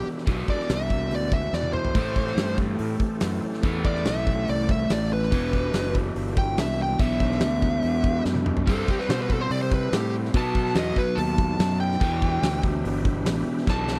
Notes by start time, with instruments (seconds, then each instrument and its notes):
Already playing: overdriven electric guitar E2 B2 E3, tonewheel organ D4 E4 G4 B4
0.07 muted fingered electric bass stroke
0.18 snare
0.26 fingered electric bass B1, overdriven electric guitar E2 B2 E3, kick, open hi-hat
0.48 lead electric guitar D5, muted fingered electric bass stroke, kick
0.60 snare
0.69 fingered electric bass C2, snare, open hi-hat
0.74 lead electric guitar E5
0.90 kick
1.11 fingered electric bass D2, lead electric guitar D5, open hi-hat
1.32 lead electric guitar E5, kick
1.53 fingered electric bass E2, lead electric guitar D5, snare
1.62 high tom
1.73 lead electric guitar C5, mid tom
1.85 floor tom
1.95 overdriven electric guitar A2 E3 A3, fingered electric bass A2, tonewheel organ C4 E4 G4 A4, kick, open hi-hat
2.16 kick
2.27 snare
2.37 fingered electric bass G2, snare, open hi-hat
2.58 kick
2.79 fingered electric bass A2, open hi-hat
3.00 muted fingered electric bass stroke, kick
3.20 fingered electric bass F#2, snare, open hi-hat
3.44 muted fingered electric bass stroke
3.53 snare
3.63 fingered electric bass E2, overdriven electric guitar A2 E3 A3, kick, open hi-hat
3.85 lead electric guitar D5, kick
3.95 snare
4.05 fingered electric bass B1, lead electric guitar E5, snare, open hi-hat
4.27 kick
4.48 fingered electric bass C2, lead electric guitar D5, open hi-hat
4.69 lead electric guitar E5, kick
4.90 fingered electric bass A1, lead electric guitar D5, snare, open hi-hat
5.13 lead electric guitar B4
5.23 snare
5.31 fingered electric bass E1, overdriven electric guitar E2 B2 E3, tonewheel organ D4 E4 G4 B4, kick, open hi-hat
5.53 kick
5.74 fingered electric bass F#1, snare, open hi-hat
5.95 kick
6.16 fingered electric bass G1, open hi-hat
6.37 lead electric guitar G5, kick
6.57 fingered electric bass C2, lead electric guitar E5, snare, open hi-hat
6.82 lead electric guitar G5
6.99 fingered electric bass B1, overdriven electric guitar E2 B2 E3, lead electric guitar E5, kick, open hi-hat
7.20 kick
7.32 snare
7.40 fingered electric bass D2, snare, open hi-hat
7.62 kick
7.83 fingered electric bass E2, open hi-hat
8.04 kick
8.25 fingered electric bass F#2, snare
8.35 high tom
8.46 mid tom
8.57 floor tom
8.66 fingered electric bass G2, overdriven electric guitar C3 G3 C4, tonewheel organ E4 G4 B4 C5, lead electric guitar A4, kick, open hi-hat
8.88 lead electric guitar G4, muted fingered electric bass stroke, kick
8.99 lead electric guitar B4, snare
9.09 fingered electric bass B2, lead electric guitar C5, snare, open hi-hat
9.21 lead electric guitar B4
9.30 lead electric guitar A4, kick
9.41 lead electric guitar C5
9.50 fingered electric bass C3, lead electric guitar D5, open hi-hat
9.62 lead electric guitar C5
9.72 lead electric guitar B4, kick
9.92 fingered electric bass A2, lead electric guitar G4, snare, open hi-hat
10.25 snare
10.33 fingered electric bass B2, overdriven electric guitar B2 F#3 B3, tonewheel organ D#4 A4 B4, kick, open hi-hat
10.37 lead electric guitar A5
10.55 kick
10.66 snare
10.75 fingered electric bass E2, lead electric guitar D#5, snare, open hi-hat
10.96 lead electric guitar B4, muted fingered electric bass stroke, kick
11.15 fingered electric bass D#2, lead electric guitar A5, open hi-hat
11.38 kick
11.59 fingered electric bass F#2, snare, open hi-hat
11.80 lead electric guitar G5
11.92 snare
11.99 overdriven electric guitar E2 B2, fingered electric bass E2, tonewheel organ D4 E4 G4 B4, kick, open hi-hat
12.03 overdriven electric guitar E3
12.22 kick
12.42 fingered electric bass D2, snare, open hi-hat
12.63 kick
12.84 fingered electric bass G1, open hi-hat
13.05 kick
13.26 fingered electric bass A1, snare, open hi-hat
13.47 muted fingered electric bass stroke
13.58 snare
13.67 fingered electric bass B1, overdriven electric guitar E2 B2 E3, lead electric guitar A5, kick, snare
13.88 snare